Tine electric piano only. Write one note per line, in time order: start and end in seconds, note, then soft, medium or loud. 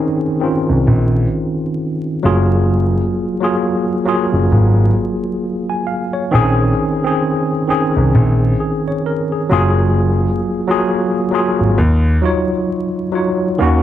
0.00 0.40 D#3 loud
0.00 0.41 C4 loud
0.00 0.42 C#4 medium
0.00 0.32 D#4 medium
0.00 2.26 G#4 loud
0.40 1.90 D#3 medium
0.40 1.90 C4 medium
0.40 1.91 C#4 medium
0.40 1.91 F4 medium
2.23 3.15 F#3 medium
2.23 2.31 A3 medium
2.23 3.16 F4 medium
2.23 3.17 G#4 medium
2.30 3.19 A#3 medium
3.41 3.94 F#3 medium
3.41 3.95 A#3 medium
3.41 3.95 F4 medium
3.41 3.96 G#4 medium
4.05 4.82 F#3 medium
4.05 4.82 A#3 medium
4.05 4.83 F4 medium
4.05 4.83 G#4 medium
5.70 5.87 G#5 medium
5.87 6.12 F5 medium
6.13 6.57 C#5 medium
6.31 6.89 D#3 loud
6.31 6.89 C4 loud
6.31 6.90 C#4 loud
6.31 6.90 G#4 loud
7.03 7.57 D#3 medium
7.03 7.58 C4 medium
7.03 7.59 C#4 medium
7.03 7.59 G#4 medium
7.67 9.17 D#3 medium
7.67 9.18 C4 medium
7.67 9.18 C#4 medium
7.67 8.59 G#4 medium
8.60 8.85 G#4 medium
8.88 9.05 C#5 medium
9.06 9.31 A#4 medium
9.32 9.52 G#4 medium
9.49 10.42 F#3 medium
9.49 10.43 A#3 medium
9.49 10.43 F4 medium
9.49 10.44 G#4 loud
10.68 11.21 F#3 medium
10.68 11.22 A#3 medium
10.68 11.22 F4 medium
10.68 11.23 G#4 loud
11.31 11.77 F#3 medium
11.31 11.78 A#3 medium
11.31 11.79 F4 medium
11.31 11.79 G#4 medium
12.22 12.99 F#3 medium
12.22 13.00 D#4 medium
12.22 13.00 F4 medium
12.22 13.01 C#5 loud
13.12 13.51 F#3 medium
13.12 13.52 D#4 medium
13.12 13.52 F4 medium
13.12 13.53 C#5 medium
13.58 13.83 D#3 loud
13.58 13.83 A#3 loud
13.58 13.83 C#4 loud
13.58 13.83 F#4 loud